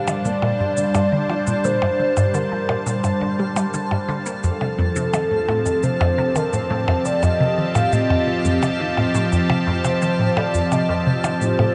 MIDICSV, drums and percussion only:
0, 0, Header, 1, 3, 480
1, 0, Start_track
1, 0, Tempo, 697674
1, 1133, Time_signature, 4, 2, 24, 8
1, 8081, End_track
2, 0, Start_track
2, 0, Title_t, "Percussion blips"
2, 52, Note_on_c, 9, 61, 73
2, 121, Note_off_c, 9, 61, 0
2, 291, Note_on_c, 9, 61, 41
2, 360, Note_off_c, 9, 61, 0
2, 651, Note_on_c, 9, 61, 71
2, 719, Note_off_c, 9, 61, 0
2, 891, Note_on_c, 9, 61, 42
2, 960, Note_off_c, 9, 61, 0
2, 1252, Note_on_c, 9, 61, 68
2, 1321, Note_off_c, 9, 61, 0
2, 1492, Note_on_c, 9, 61, 39
2, 1561, Note_off_c, 9, 61, 0
2, 1850, Note_on_c, 9, 61, 68
2, 1919, Note_off_c, 9, 61, 0
2, 2091, Note_on_c, 9, 61, 40
2, 2160, Note_off_c, 9, 61, 0
2, 2452, Note_on_c, 9, 61, 71
2, 2521, Note_off_c, 9, 61, 0
2, 2691, Note_on_c, 9, 61, 40
2, 2760, Note_off_c, 9, 61, 0
2, 3172, Note_on_c, 9, 61, 37
2, 3241, Note_off_c, 9, 61, 0
2, 3533, Note_on_c, 9, 61, 72
2, 3602, Note_off_c, 9, 61, 0
2, 3774, Note_on_c, 9, 61, 37
2, 3843, Note_off_c, 9, 61, 0
2, 4134, Note_on_c, 9, 61, 68
2, 4202, Note_off_c, 9, 61, 0
2, 4373, Note_on_c, 9, 61, 39
2, 4442, Note_off_c, 9, 61, 0
2, 4733, Note_on_c, 9, 61, 67
2, 4802, Note_off_c, 9, 61, 0
2, 4973, Note_on_c, 9, 61, 37
2, 5042, Note_off_c, 9, 61, 0
2, 5333, Note_on_c, 9, 61, 67
2, 5402, Note_off_c, 9, 61, 0
2, 5575, Note_on_c, 9, 61, 37
2, 5644, Note_off_c, 9, 61, 0
2, 5935, Note_on_c, 9, 61, 67
2, 6004, Note_off_c, 9, 61, 0
2, 6174, Note_on_c, 9, 61, 41
2, 6243, Note_off_c, 9, 61, 0
2, 6533, Note_on_c, 9, 61, 70
2, 6602, Note_off_c, 9, 61, 0
2, 6774, Note_on_c, 9, 61, 40
2, 6843, Note_off_c, 9, 61, 0
2, 7134, Note_on_c, 9, 61, 69
2, 7203, Note_off_c, 9, 61, 0
2, 7374, Note_on_c, 9, 61, 41
2, 7443, Note_off_c, 9, 61, 0
2, 7734, Note_on_c, 9, 61, 68
2, 7802, Note_off_c, 9, 61, 0
2, 7973, Note_on_c, 9, 61, 40
2, 8042, Note_off_c, 9, 61, 0
2, 8081, End_track
3, 0, Start_track
3, 0, Title_t, "Drums"
3, 52, Note_on_c, 9, 69, 63
3, 121, Note_off_c, 9, 69, 0
3, 173, Note_on_c, 9, 69, 50
3, 242, Note_off_c, 9, 69, 0
3, 531, Note_on_c, 9, 69, 66
3, 600, Note_off_c, 9, 69, 0
3, 651, Note_on_c, 9, 69, 51
3, 719, Note_off_c, 9, 69, 0
3, 1011, Note_on_c, 9, 69, 62
3, 1080, Note_off_c, 9, 69, 0
3, 1131, Note_on_c, 9, 69, 50
3, 1200, Note_off_c, 9, 69, 0
3, 1492, Note_on_c, 9, 69, 61
3, 1561, Note_off_c, 9, 69, 0
3, 1611, Note_on_c, 9, 69, 50
3, 1680, Note_off_c, 9, 69, 0
3, 1972, Note_on_c, 9, 69, 60
3, 2041, Note_off_c, 9, 69, 0
3, 2091, Note_on_c, 9, 69, 49
3, 2160, Note_off_c, 9, 69, 0
3, 2452, Note_on_c, 9, 69, 63
3, 2521, Note_off_c, 9, 69, 0
3, 2571, Note_on_c, 9, 69, 50
3, 2640, Note_off_c, 9, 69, 0
3, 2931, Note_on_c, 9, 69, 61
3, 3000, Note_off_c, 9, 69, 0
3, 3051, Note_on_c, 9, 69, 48
3, 3120, Note_off_c, 9, 69, 0
3, 3412, Note_on_c, 9, 69, 61
3, 3481, Note_off_c, 9, 69, 0
3, 3533, Note_on_c, 9, 69, 47
3, 3602, Note_off_c, 9, 69, 0
3, 3893, Note_on_c, 9, 69, 60
3, 3962, Note_off_c, 9, 69, 0
3, 4012, Note_on_c, 9, 69, 46
3, 4080, Note_off_c, 9, 69, 0
3, 4373, Note_on_c, 9, 69, 60
3, 4442, Note_off_c, 9, 69, 0
3, 4494, Note_on_c, 9, 69, 48
3, 4563, Note_off_c, 9, 69, 0
3, 4852, Note_on_c, 9, 69, 59
3, 4921, Note_off_c, 9, 69, 0
3, 4973, Note_on_c, 9, 69, 46
3, 5042, Note_off_c, 9, 69, 0
3, 5333, Note_on_c, 9, 69, 57
3, 5402, Note_off_c, 9, 69, 0
3, 5453, Note_on_c, 9, 69, 45
3, 5522, Note_off_c, 9, 69, 0
3, 5814, Note_on_c, 9, 69, 58
3, 5883, Note_off_c, 9, 69, 0
3, 5935, Note_on_c, 9, 69, 46
3, 6004, Note_off_c, 9, 69, 0
3, 6293, Note_on_c, 9, 69, 59
3, 6362, Note_off_c, 9, 69, 0
3, 6414, Note_on_c, 9, 69, 45
3, 6483, Note_off_c, 9, 69, 0
3, 6774, Note_on_c, 9, 69, 60
3, 6843, Note_off_c, 9, 69, 0
3, 6894, Note_on_c, 9, 69, 45
3, 6962, Note_off_c, 9, 69, 0
3, 7254, Note_on_c, 9, 69, 54
3, 7322, Note_off_c, 9, 69, 0
3, 7374, Note_on_c, 9, 69, 46
3, 7443, Note_off_c, 9, 69, 0
3, 7734, Note_on_c, 9, 69, 55
3, 7802, Note_off_c, 9, 69, 0
3, 7854, Note_on_c, 9, 69, 44
3, 7923, Note_off_c, 9, 69, 0
3, 8081, End_track
0, 0, End_of_file